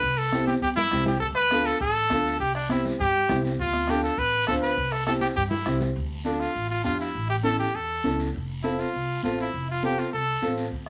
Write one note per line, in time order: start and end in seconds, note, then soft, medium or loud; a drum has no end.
0.00 0.50 C2 medium
0.00 0.19 B4 loud
0.00 bombo low medium
0.04 long guiro medium
0.18 0.47 A4 loud
0.32 0.54 C4 medium
0.32 0.54 E4 medium
0.32 0.54 G4 medium
0.32 bombo rim medium
0.32 high conga loud
0.32 short guiro medium
0.47 0.54 G4 medium
0.47 high conga loud
0.47 short guiro medium
0.62 0.86 G2 medium
0.62 0.69 G4 loud
0.62 bombo low loud
0.62 long guiro medium
0.76 1.04 E4 loud
0.76 low conga loud
0.91 1.15 C2 medium
0.91 1.13 C4 medium
0.91 1.13 E4 medium
0.91 1.13 G4 medium
0.91 bombo low medium
0.91 bombo rim medium
0.91 low conga medium
0.91 short guiro medium
1.06 1.19 G4 medium
1.06 low conga medium
1.06 short guiro medium
1.20 1.27 A4 loud
1.20 bombo low medium
1.20 long guiro medium
1.35 1.67 B4 loud
1.35 bombo rim medium
1.51 1.72 D4 medium
1.51 1.72 F4 medium
1.51 1.73 A4 medium
1.51 bombo rim medium
1.51 high conga medium
1.51 short guiro medium
1.66 1.80 A4 loud
1.66 short guiro medium
1.80 2.05 A1 medium
1.80 2.36 A4 loud
1.80 bombo low loud
1.80 long guiro medium
2.10 2.34 D2 loud
2.10 2.31 D4 medium
2.10 2.32 F4 medium
2.10 2.32 A4 medium
2.10 bombo low medium
2.10 bombo rim medium
2.10 high conga medium
2.10 short guiro medium
2.26 short guiro medium
2.40 2.87 C2 medium
2.40 2.54 G4 medium
2.40 bombo low medium
2.40 long guiro medium
2.55 2.69 D4 medium
2.55 bombo rim medium
2.69 2.91 C4 medium
2.69 2.84 E4 medium
2.69 2.91 E4 medium
2.69 2.91 G4 medium
2.69 bombo rim medium
2.69 high conga loud
2.69 short guiro medium
2.85 low conga medium
2.85 short guiro medium
3.00 3.23 G2 medium
3.00 3.41 G4 loud
3.00 bombo low loud
3.00 long guiro medium
3.29 3.53 C2 loud
3.29 3.50 C4 medium
3.29 3.50 E4 medium
3.29 3.51 G4 medium
3.29 bombo low medium
3.29 bombo rim medium
3.29 high conga medium
3.29 low conga medium
3.29 short guiro medium
3.45 short guiro medium
3.59 4.06 D2 medium
3.59 3.91 F4 loud
3.59 bombo low medium
3.59 long guiro medium
3.73 bombo rim medium
3.73 high conga medium
3.88 4.09 D4 medium
3.88 4.10 F4 medium
3.88 4.03 G4 medium
3.88 4.10 A4 medium
3.88 bombo rim medium
3.88 high conga medium
3.88 short guiro medium
4.04 4.20 A4 medium
4.04 short guiro medium
4.17 4.42 A1 medium
4.17 4.47 B4 loud
4.17 bombo low medium
4.17 long guiro medium
4.47 4.71 D2 medium
4.47 4.69 D4 medium
4.47 4.69 F4 medium
4.47 4.54 A4 medium
4.47 4.69 C5 medium
4.47 bombo low medium
4.47 bombo rim medium
4.47 high conga medium
4.47 short guiro medium
4.62 4.93 B4 medium
4.62 short guiro medium
4.77 5.25 C2 medium
4.77 bombo low medium
4.77 long guiro medium
4.92 5.06 A4 medium
4.92 bombo rim medium
5.06 5.28 C4 medium
5.06 5.28 E4 medium
5.06 5.28 G4 medium
5.06 5.13 A4 medium
5.06 bombo rim medium
5.06 high conga medium
5.06 short guiro medium
5.21 5.28 G4 medium
5.21 high conga medium
5.21 short guiro medium
5.36 5.60 G2 medium
5.36 5.43 G4 medium
5.36 bombo low medium
5.36 long guiro medium
5.50 5.78 E4 medium
5.50 low conga medium
5.66 5.90 C2 loud
5.66 5.87 C4 medium
5.66 5.87 E4 medium
5.66 5.87 G4 medium
5.66 bombo rim medium
5.66 short guiro medium
5.81 low conga medium
5.81 short guiro medium
5.95 6.43 D2 loud
5.95 high conga soft
5.95 long guiro medium
6.25 6.46 D4 medium
6.25 6.41 D4 medium
6.25 6.46 F4 medium
6.25 6.47 A4 medium
6.25 high conga medium
6.25 short guiro medium
6.40 6.69 F4 medium
6.40 short guiro medium
6.54 6.79 A1 medium
6.54 high conga soft
6.54 long guiro medium
6.70 6.84 F4 medium
6.84 7.09 F2 medium
6.84 7.05 D4 medium
6.84 7.05 F4 medium
6.84 6.99 F4 medium
6.84 7.05 G4 medium
6.84 high conga medium
6.84 short guiro medium
7.00 7.28 E4 medium
7.00 short guiro medium
7.14 7.62 A1 medium
7.14 high conga soft
7.14 long guiro medium
7.30 7.36 G4 medium
7.43 7.65 C#4 medium
7.43 7.65 E4 medium
7.43 7.65 A4 medium
7.43 7.58 A4 loud
7.43 high conga medium
7.43 short guiro medium
7.59 7.77 G4 medium
7.59 short guiro medium
7.74 7.98 E2 medium
7.74 8.19 A4 medium
7.74 high conga soft
7.74 long guiro medium
8.04 8.28 C#2 medium
8.04 8.25 C#4 medium
8.04 8.25 E4 medium
8.04 8.25 A4 medium
8.04 high conga medium
8.04 short guiro medium
8.19 short guiro medium
8.33 8.82 F1 medium
8.33 high conga soft
8.33 long guiro medium
8.63 8.84 C4 medium
8.63 8.81 E4 medium
8.63 8.84 F4 medium
8.63 8.84 A4 medium
8.63 high conga medium
8.63 short guiro medium
8.79 9.24 F4 medium
8.79 short guiro medium
8.94 9.17 C2 medium
8.94 high conga soft
8.94 long guiro medium
9.23 9.47 A1 medium
9.23 9.44 C4 medium
9.23 9.37 F4 medium
9.23 9.44 F4 medium
9.23 9.45 A4 medium
9.23 high conga medium
9.23 short guiro medium
9.39 9.67 E4 medium
9.39 short guiro medium
9.53 10.01 F1 medium
9.53 high conga soft
9.53 long guiro medium
9.71 9.83 F4 medium
9.82 10.03 C4 medium
9.82 10.04 F4 medium
9.82 10.01 G4 medium
9.82 10.04 A4 medium
9.82 high conga medium
9.82 short guiro medium
9.98 10.13 F4 medium
9.98 short guiro medium
10.13 10.36 C2 medium
10.13 10.54 A4 loud
10.13 high conga soft
10.13 long guiro medium
10.42 10.66 A1 medium
10.42 10.63 C4 medium
10.42 10.63 F4 medium
10.42 10.63 A4 medium
10.42 high conga medium
10.42 short guiro medium
10.57 short guiro medium
10.71 10.89 D2 medium
10.71 bombo low medium
10.71 high conga soft
10.71 long guiro medium